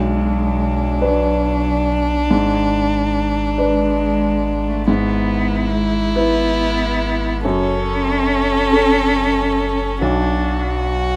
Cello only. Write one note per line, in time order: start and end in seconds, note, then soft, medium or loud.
0.00 1.06 G#3 medium
1.04 2.33 F#3 medium
3.61 4.70 G#3 medium
4.68 4.87 A3 medium
4.88 5.72 B3 medium
5.71 6.17 G#3 medium
6.15 7.45 B3 medium
7.43 10.04 C#4 medium
10.02 10.88 D4 medium